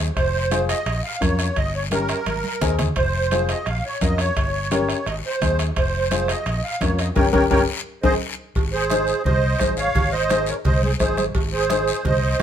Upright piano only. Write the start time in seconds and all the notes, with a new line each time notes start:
0.51 C4 F4 G#4
1.21 C#4 F4 A#4
1.92 C#4 G4 A#4
2.61 C4 D#4 G#4
3.32 C4 F4 G#4
4.01 C#4 F4 A#4
4.71 C#4 G4 A#4
5.41 C4 D#4 G#4
6.11 C4 F4 G#4
6.81 C#4 F4 A#4
7.16 C#4 G4 A#4
7.33 C#4 G4 A#4
7.51 C#4 G4 A#4
8.03 C4 D#4 G#4
8.91 D#4 G#4 C5
9.60 D#4 G#4 C5
10.30 D#4 G#4 C5
11.00 D#4 G#4 C5
11.70 D#4 G#4 C5
12.39 D#4